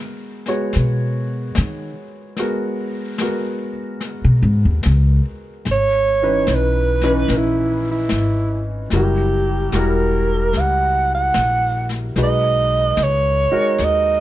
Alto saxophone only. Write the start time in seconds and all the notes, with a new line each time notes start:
5.72 C#5
6.55 B4
7.37 E4
7.91 E4
8.96 G4
9.79 A#4
10.60 F#5
11.15 F#5
12.23 D#5
13.03 C#5
13.85 D#5